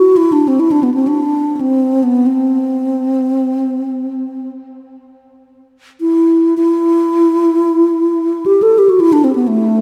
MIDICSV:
0, 0, Header, 1, 2, 480
1, 0, Start_track
1, 0, Tempo, 500000
1, 9420, End_track
2, 0, Start_track
2, 0, Title_t, "Bass flute"
2, 0, Program_c, 0, 73
2, 0, Note_on_c, 0, 66, 72
2, 160, Note_on_c, 0, 64, 83
2, 174, Note_off_c, 0, 66, 0
2, 310, Note_on_c, 0, 62, 73
2, 324, Note_off_c, 0, 64, 0
2, 461, Note_on_c, 0, 60, 69
2, 475, Note_off_c, 0, 62, 0
2, 573, Note_on_c, 0, 64, 78
2, 588, Note_off_c, 0, 60, 0
2, 686, Note_on_c, 0, 62, 77
2, 700, Note_off_c, 0, 64, 0
2, 798, Note_on_c, 0, 59, 65
2, 812, Note_off_c, 0, 62, 0
2, 898, Note_off_c, 0, 59, 0
2, 904, Note_on_c, 0, 60, 65
2, 1031, Note_on_c, 0, 62, 77
2, 1046, Note_off_c, 0, 60, 0
2, 1494, Note_off_c, 0, 62, 0
2, 1494, Note_on_c, 0, 62, 45
2, 1541, Note_on_c, 0, 60, 68
2, 1556, Note_off_c, 0, 62, 0
2, 1951, Note_on_c, 0, 59, 72
2, 1966, Note_off_c, 0, 60, 0
2, 2174, Note_on_c, 0, 60, 67
2, 2188, Note_off_c, 0, 59, 0
2, 4321, Note_off_c, 0, 60, 0
2, 5766, Note_on_c, 0, 64, 67
2, 6282, Note_off_c, 0, 64, 0
2, 6307, Note_on_c, 0, 64, 89
2, 8121, Note_on_c, 0, 67, 78
2, 8135, Note_off_c, 0, 64, 0
2, 8280, Note_on_c, 0, 69, 84
2, 8295, Note_off_c, 0, 67, 0
2, 8433, Note_on_c, 0, 67, 76
2, 8447, Note_off_c, 0, 69, 0
2, 8538, Note_on_c, 0, 66, 76
2, 8552, Note_off_c, 0, 67, 0
2, 8642, Note_on_c, 0, 64, 88
2, 8656, Note_off_c, 0, 66, 0
2, 8761, Note_on_c, 0, 62, 85
2, 8776, Note_off_c, 0, 64, 0
2, 8872, Note_on_c, 0, 60, 71
2, 8886, Note_off_c, 0, 62, 0
2, 8973, Note_off_c, 0, 60, 0
2, 8979, Note_on_c, 0, 59, 65
2, 9097, Note_on_c, 0, 57, 80
2, 9111, Note_off_c, 0, 59, 0
2, 9420, Note_off_c, 0, 57, 0
2, 9420, End_track
0, 0, End_of_file